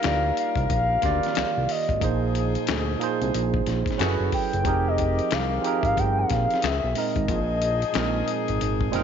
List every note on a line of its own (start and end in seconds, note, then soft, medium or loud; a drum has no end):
0.00 1.64 G3 medium
0.00 0.52 A#3 medium
0.00 0.51 D#4 medium
0.00 1.64 F4 medium
0.00 0.53 F4 medium
0.00 1.64 A#4 medium
0.00 0.38 F5 loud
0.00 closed hi-hat medium
0.04 0.32 D2 medium
0.04 0.53 G4 medium
0.04 0.54 D5 medium
0.04 finger snap medium
0.04 snare loud
0.37 1.72 F5 loud
0.37 closed hi-hat medium
0.56 0.67 C2 medium
0.56 kick medium
0.56 closed hi-hat soft
0.70 0.98 A#1 loud
0.70 kick medium
0.70 closed hi-hat medium
1.01 1.20 D2 medium
1.01 1.27 D#3 medium
1.01 1.27 A#3 medium
1.01 1.28 F4 medium
1.01 1.29 G4 medium
1.01 kick medium
1.01 snare soft
1.01 closed hi-hat medium
1.06 1.29 D5 medium
1.23 snare soft
1.23 closed hi-hat soft
1.35 1.45 C2 soft
1.35 finger snap loud
1.35 snare loud
1.35 closed hi-hat medium
1.57 1.67 C2 medium
1.69 2.35 D#5 medium
1.69 open hi-hat medium
1.89 2.04 G#1 medium
1.89 kick medium
1.89 closed hi-hat soft
2.00 2.57 A#1 loud
2.00 2.49 A#2 medium
2.00 3.63 F3 medium
2.00 2.50 A#3 medium
2.00 3.63 D#4 medium
2.00 2.51 D#4 medium
2.00 3.63 G#4 medium
2.00 2.51 G#4 medium
2.00 kick loud
2.00 closed hi-hat medium
2.04 2.52 C5 medium
2.35 closed hi-hat medium
2.55 closed hi-hat soft
2.67 2.96 D2 medium
2.67 finger snap medium
2.67 snare loud
2.67 closed hi-hat medium
2.99 3.25 A#2 medium
2.99 3.25 A#3 medium
2.99 3.26 D#4 medium
2.99 3.26 G#4 medium
2.99 closed hi-hat medium
3.03 3.27 C5 medium
3.22 3.32 C2 loud
3.22 closed hi-hat soft
3.34 3.61 A#1 loud
3.34 closed hi-hat medium
3.54 kick medium
3.66 3.83 A#1 loud
3.66 snare soft
3.66 closed hi-hat medium
3.86 kick medium
3.86 closed hi-hat soft
3.91 snare soft
3.97 4.17 F#1 loud
3.97 4.31 C#3 medium
3.97 4.39 F#3 medium
3.97 4.31 B3 medium
3.97 4.40 C#4 medium
3.97 4.40 E4 medium
3.97 4.31 F#4 medium
3.97 4.41 G#4 medium
3.97 snare loud
3.97 closed hi-hat medium
4.01 4.41 A4 medium
4.01 4.41 B4 medium
4.01 finger snap loud
4.20 4.31 F#1 medium
4.32 4.89 G5 loud
4.32 kick medium
4.32 open hi-hat medium
4.53 4.64 F#1 loud
4.53 closed hi-hat soft
4.64 5.21 F1 loud
4.64 6.27 D#3 medium
4.64 5.58 F3 medium
4.64 5.58 C4 medium
4.64 6.26 C4 medium
4.64 5.59 D#4 medium
4.64 6.27 G4 medium
4.64 5.59 G4 medium
4.64 5.60 G#4 medium
4.64 kick loud
4.64 closed hi-hat medium
4.68 5.60 A#4 medium
4.88 5.34 D#5 loud
4.98 kick medium
4.98 closed hi-hat medium
5.19 closed hi-hat soft
5.31 5.59 C2 loud
5.31 5.80 F5 loud
5.31 finger snap medium
5.31 snare loud
5.31 closed hi-hat medium
5.62 6.57 F3 medium
5.62 6.57 C4 medium
5.62 6.58 D#4 medium
5.62 6.58 G4 medium
5.62 6.59 G#4 medium
5.62 closed hi-hat medium
5.67 6.59 A#4 medium
5.81 5.94 G#1 medium
5.81 5.87 E5 medium
5.81 kick medium
5.85 6.00 F5 medium
5.85 closed hi-hat soft
5.97 6.25 G1 medium
5.97 6.20 G5 loud
5.97 kick loud
5.97 closed hi-hat medium
6.19 6.67 F5 loud
6.30 6.47 A#1 medium
6.30 kick medium
6.30 snare soft
6.30 closed hi-hat medium
6.51 snare soft
6.51 closed hi-hat soft
6.62 6.80 C#2 loud
6.62 6.95 D#3 medium
6.62 6.95 E3 medium
6.62 6.95 G#4 medium
6.62 7.00 E5 medium
6.62 finger snap loud
6.62 snare loud
6.62 closed hi-hat medium
6.84 6.94 B1 medium
6.94 7.36 A#2 medium
6.94 7.36 G#3 medium
6.94 7.37 C4 medium
6.94 7.37 D#4 medium
6.94 open hi-hat medium
6.98 7.38 A#4 medium
6.98 9.03 D#5 medium
7.16 7.27 G#1 medium
7.16 kick medium
7.16 closed hi-hat soft
7.28 7.84 A#1 loud
7.28 9.03 F3 medium
7.28 9.03 D#4 medium
7.28 9.03 G#4 medium
7.28 kick loud
7.28 closed hi-hat medium
7.62 closed hi-hat medium
7.82 closed hi-hat soft
7.92 8.23 A#1 medium
7.92 8.19 A#2 medium
7.92 8.19 G#3 medium
7.92 8.20 C4 medium
7.92 8.20 D#4 medium
7.92 finger snap medium
7.92 snare loud
7.92 closed hi-hat medium
7.97 8.21 A#4 medium
8.28 closed hi-hat medium
8.48 8.59 G#1 medium
8.48 closed hi-hat soft
8.61 8.89 G#1 loud
8.61 closed hi-hat medium
8.81 kick medium
8.91 9.03 F1 medium
8.91 9.03 A#2 medium
8.91 9.03 G#3 medium
8.91 9.03 C4 medium
8.91 9.03 D#4 medium
8.91 snare soft
8.91 closed hi-hat medium
8.96 9.03 A#4 medium